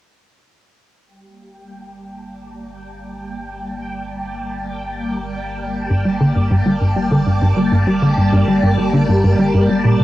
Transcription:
1.05 sub bass G1, string machine G3, synth texture G5
1.17 string machine A#3
1.34 string machine G4
1.62 string machine A5
2.16 string machine D5
5.90 analog synth bass G2
6.05 analog synth bass G3
6.20 analog synth bass D3
6.35 analog synth bass G2
6.51 analog synth bass G2
6.66 analog synth bass G3
6.81 analog synth bass G2
6.96 analog synth bass G3
7.11 analog synth bass D3
7.26 analog synth bass G2
7.42 analog synth bass G2
7.57 analog synth bass G3
7.72 analog synth bass G2
7.87 analog synth bass G3
8.02 analog synth bass D3
8.17 analog synth bass G2
8.32 analog synth bass G2
8.48 analog synth bass G3
8.63 analog synth bass G2
8.78 analog synth bass G3
8.93 analog synth bass D3
9.08 analog synth bass G2
9.23 analog synth bass G2
9.39 analog synth bass G3
9.54 analog synth bass G2
9.69 analog synth bass G3
9.84 analog synth bass A#2
9.99 analog synth bass C3

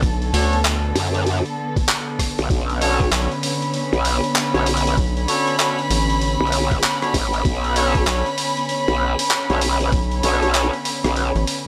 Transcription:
Already playing: string section D3 B3 A4, analog synth pad A5
0.03 analog synth bass B1, kick, open hi-hat
0.22 open hi-hat
0.33 analog synth bass D2, horn section C#4 D4 F#4 A4 C#5, open hi-hat
0.53 open hi-hat
0.65 clap, open hi-hat
0.95 wobble bass F#2, open hi-hat
1.15 open hi-hat
1.26 open hi-hat
1.46 open hi-hat
1.76 kick, open hi-hat
1.89 clap, open hi-hat
2.19 kick, cross-stick, open hi-hat
2.39 wobble bass B1, open hi-hat
2.50 wobble bass B1, string section C#4, kick, open hi-hat
2.56 analog synth pad B5
2.70 open hi-hat
2.81 horn section C#4 D4 F#4 A4 C#5, open hi-hat
3.00 kick, open hi-hat
3.12 analog synth bass B1, horn section C#4 D4 F#4 A4 C#5, clap, open hi-hat
3.32 open hi-hat
3.43 open hi-hat
3.62 open hi-hat
3.74 open hi-hat
3.93 wobble bass B1, open hi-hat
4.05 open hi-hat
4.24 open hi-hat
4.36 clap, open hi-hat
4.54 wobble bass B1, horn section C#4 D4 F#4 A4 C#5, open hi-hat
4.66 open hi-hat
4.77 open hi-hat
4.86 open hi-hat
4.87 open hi-hat
4.97 analog synth bass B1, kick, open hi-hat
5.17 open hi-hat
5.28 horn section C#4 D4 F#4 A4 C#5, open hi-hat
5.47 open hi-hat
5.59 horn section C#4 D4 F#4 A4 C#5, clap, open hi-hat
5.79 open hi-hat
5.90 analog synth bass A1, open hi-hat
6.10 open hi-hat
6.21 open hi-hat
6.41 wobble bass B1
6.47 open hi-hat
6.52 open hi-hat
6.71 kick, open hi-hat
6.83 clap, open hi-hat
7.02 horn section C#4 D4 F#4 A4 C#5, cross-stick, open hi-hat
7.14 wobble bass A1, kick, open hi-hat
7.33 open hi-hat
7.45 wobble bass B1, kick, open hi-hat
7.64 open hi-hat
7.76 horn section C#4 D4 F#4 A4 C#5, open hi-hat
7.95 kick, open hi-hat
8.07 analog synth bass B1, horn section C#4 D4 F#4 A4 C#5, clap, open hi-hat
8.26 open hi-hat
8.38 open hi-hat
8.57 open hi-hat
8.59 open hi-hat
8.63 open hi-hat
8.65 open hi-hat
8.67 open hi-hat
8.69 open hi-hat
8.88 wobble bass B1, open hi-hat
9.19 open hi-hat
9.31 clap, open hi-hat
9.50 wobble bass B1, horn section C#4 D4 F#4 A4 C#5, open hi-hat
9.61 open hi-hat
9.81 open hi-hat
9.92 analog synth bass B1, kick, open hi-hat
10.11 open hi-hat
10.23 wobble bass B1, horn section C#4 D4 F#4 A4 C#5, open hi-hat
10.43 open hi-hat
10.54 horn section C#4 D4 F#4 A4 C#5, clap, open hi-hat
10.73 open hi-hat
10.85 open hi-hat
11.04 wobble bass B1, cross-stick, open hi-hat
11.16 open hi-hat
11.35 analog synth bass A1, open hi-hat
11.47 open hi-hat

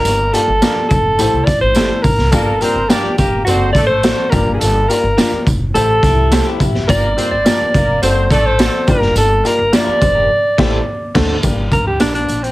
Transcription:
Already playing: upright piano G2 A#3 F4 G4 D5, alto saxophone A#4
0.05 upright bass G1, closed hi-hat, tambourine
0.33 upright piano A#3 F4 G4 D5, alto saxophone A4, closed hi-hat, tambourine
0.47 upright bass G1
0.62 upright piano A#3 F4 G4 D5, clean electric guitar D4 F4 A#4, snare, closed hi-hat, tambourine
0.76 muted upright bass stroke
0.89 upright bass F1, alto saxophone A4, kick, closed hi-hat, tambourine
1.18 upright bass A1, upright piano A2 A3 E4 G4 C5, closed hi-hat, tambourine
1.33 upright bass C2
1.45 upright bass A#1, alto saxophone D5, kick, snare, closed hi-hat, tambourine
1.61 upright bass A1, alto saxophone C5
1.75 upright bass G1, upright piano A3 E4 G4 D5, clean electric guitar C4 G4 A4, snare, closed hi-hat, tambourine
2.02 upright bass A1, alto saxophone A#4, kick, open hi-hat, tambourine
2.18 upright bass C2, snare
2.31 upright bass G1, upright piano G2 A#3 F4 G4 D5, horn section A#3 A#4, alto saxophone A4, kick, closed hi-hat, tambourine
2.61 upright piano A#3 F4 G4 D5, horn section C4 C5, alto saxophone A#4, closed hi-hat, tambourine
2.75 upright bass G1
2.89 upright piano A#3 F4 G4 D5, clean electric guitar D4 F4 A#4, horn section D4 D5, alto saxophone G4, snare, closed hi-hat, tambourine
3.04 muted upright bass stroke
3.18 upright bass F1, horn section A#3 A#4, alto saxophone G4, kick, closed hi-hat, tambourine
3.45 upright bass F#1, upright piano C4 F#4 A4 D5, horn section C4 C5, alto saxophone F#4, closed hi-hat, tambourine
3.72 alto saxophone D5, kick, snare, closed hi-hat, tambourine
3.77 horn section A3 A4
3.87 alto saxophone C5
4.03 upright piano C4 F#4 A4 D5, clean electric guitar C4 F#4 A4, snare, closed hi-hat, tambourine
4.30 upright bass G1, upright piano G2 A#3 F4 G4 D5, alto saxophone A#4, kick, closed hi-hat, tambourine
4.47 upright bass F#1
4.54 alto saxophone G#4
4.60 upright bass G1, alto saxophone A4, closed hi-hat, tambourine
4.88 upright piano A#3 F4 G4 D5, alto saxophone A#4, closed hi-hat, tambourine
5.03 upright bass G1
5.17 upright piano A#3 F4 G4 D5, clean electric guitar D4 F4 A#4, snare, closed hi-hat, tambourine
5.32 muted upright bass stroke
5.47 upright bass F1, kick, closed hi-hat, tambourine
5.74 upright bass A1, upright piano A2 A3 E4 G4 C5, alto saxophone A4, closed hi-hat, tambourine
6.03 upright bass C2, clean electric guitar E4 G4, kick, snare, closed hi-hat, tambourine
6.31 upright piano A3 E4 G4 C5, clean electric guitar C4 G4 A4, snare, closed hi-hat, tambourine
6.47 clean electric guitar E4 G4
6.60 upright bass A#1, kick, closed hi-hat, tambourine
6.75 upright bass F#1, snare
6.88 upright bass G1, upright piano G2 A#3 F4 G4 D5, horn section A#3 A#4, alto saxophone D5, kick, closed hi-hat, tambourine
7.17 upright piano A#3 F4 G4 D5, horn section C4 C5, closed hi-hat, tambourine
7.31 upright bass G1, alto saxophone D5
7.45 upright piano A#3 F4 G4 D5, horn section D4 D5, clean electric guitar D4 F4 A#4, snare, closed hi-hat, tambourine
7.60 muted upright bass stroke
7.74 upright bass F1, horn section A#3 A#4, kick, closed hi-hat, tambourine
8.02 upright bass F#1, upright piano C4 F#4 A4 D5, horn section C4 C5, alto saxophone C5, closed hi-hat, tambourine
8.30 upright bass A1, horn section A3 A4, alto saxophone D5, kick, snare, closed hi-hat, tambourine
8.46 alto saxophone C5
8.59 upright piano C4 F#4 A4 D5, clean electric guitar C4 F#4 A4, snare, closed hi-hat, tambourine
8.87 upright bass G1, upright piano G2 A#3 F4 G4 D5, alto saxophone A#4, kick, closed hi-hat, tambourine
9.02 upright bass F#1, snare
9.15 upright bass G1, alto saxophone A4, closed hi-hat, tambourine
9.44 upright piano A#3 F4 G4 D5, alto saxophone A#4, closed hi-hat, tambourine
9.59 upright bass G1
9.72 upright piano A#3 F4 G4 D5, clean electric guitar D4 E4 F4 G4 A#4, alto saxophone D5, snare, closed hi-hat, tambourine
9.87 clean electric guitar G4 A#4, muted upright bass stroke
10.01 upright bass F1, clean electric guitar A4 C5, kick, closed hi-hat, tambourine
10.15 clean electric guitar G4 A#4
10.58 upright bass A1, upright piano A2 A3 E4 G4 C5, clean electric guitar C4 E4 G4 A4, kick, snare, crash
11.15 upright bass D2, upright piano D3 A3 D4 F#4 C5, clean electric guitar C4 F#4 A4, kick, snare, crash
11.42 upright bass G1, upright piano G2 A#3 G4 D5, kick, closed hi-hat, tambourine
11.72 upright bass D2, alto saxophone A#4, kick, closed hi-hat, tambourine
11.87 alto saxophone G4
12.00 upright bass A#1, upright piano A#3 G4 D5, clean electric guitar D4 G4 A#4, alto saxophone D4, snare, closed hi-hat, tambourine
12.14 alto saxophone D4, closed hi-hat
12.28 upright bass A#1, closed hi-hat, tambourine
12.43 alto saxophone C4, closed hi-hat

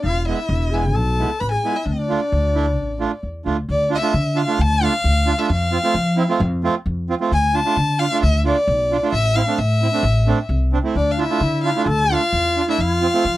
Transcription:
0.02 upright bass E1, clarinet F4
0.06 violin F5
0.25 accordion G#3 B3 E4, clarinet E4, violin E5
0.49 upright bass E1
0.70 accordion G#3 B3 E4, clarinet G#4, violin G#5
0.94 upright bass B1, clarinet A4, violin A5
1.19 accordion G#3 B3 E4
1.40 upright bass A1, clarinet B4, violin B5
1.51 clarinet G#4, violin G#5
1.64 accordion G#3 B3 E4
1.71 clarinet E4 F4
1.76 violin E5
1.85 upright bass D2, clarinet D4, violin D5
1.93 clarinet C4
1.99 clarinet D4
2.09 accordion A3 D4 F4
2.32 upright bass D2
2.55 accordion A3 D4 E4
2.78 upright bass A1
3.00 accordion A3 D4 F4
3.23 upright bass E2
3.45 upright bass D2, accordion A3 D4 F4
3.69 upright bass D2, violin D5
3.90 accordion D4 F4
3.95 violin E5
4.02 accordion A3 D4 F4
4.14 upright bass D3
4.36 accordion D4 F4, violin F5
4.47 accordion A3 D4 F4
4.59 upright bass D2, violin A5
4.82 accordion A3 D4 F4, violin F5
5.04 upright bass D2
5.27 accordion D4 F4
5.38 accordion A3 D4 F4, violin E5
5.49 upright bass F2, violin F5
5.72 accordion C4 F4
5.83 accordion A3 C4 F4
5.94 upright bass F3
6.17 accordion C4 E4
6.29 accordion A3 C4 F4
6.40 upright bass F2
6.64 accordion A3 C4 F4
6.86 upright bass F2
7.10 accordion C4 F4
7.21 accordion A3 C4 F4
7.31 upright bass D2, violin G#5
7.54 accordion D4 F4, violin A5
7.65 accordion A3 D4 F4
7.77 upright bass D3
7.99 accordion D4 F4, violin F5
8.12 accordion A3 D4 F4
8.23 upright bass D2, violin E5
8.45 accordion A3 D4 F4, violin D5
8.67 upright bass B1
8.91 accordion D4 F4
9.02 accordion A3 D4 F4
9.13 upright bass A1, violin E5
9.35 accordion C4 E4, violin F5
9.47 accordion A3 C4 D4
9.58 upright bass A2, violin E5
9.82 accordion C4 E4
9.93 accordion A3 C4 D4
10.03 upright bass A1
10.27 accordion A3 C4 D4
10.49 upright bass C2
10.73 accordion C4 D4
10.84 accordion A3 C4 E4
10.95 upright bass D2, clarinet D4, violin D5
11.11 violin F5
11.18 accordion D4 F4, clarinet E4, violin E5
11.30 accordion A3 D4 F4
11.41 upright bass D3, clarinet E4
11.64 accordion D4 F4, violin F5
11.76 accordion A3 D4 F4
11.86 upright bass D2, clarinet A4, violin A5
12.04 clarinet G#4
12.10 accordion A3 D4 F4, clarinet F4, violin F5
12.33 upright bass E2
12.57 accordion D4 F4
12.68 accordion A3 D4 E4, clarinet E4, violin E5
12.79 upright bass F2, clarinet F4, violin F5
13.01 accordion C4 F4
13.13 accordion A3 C4 F4
13.25 upright bass F3

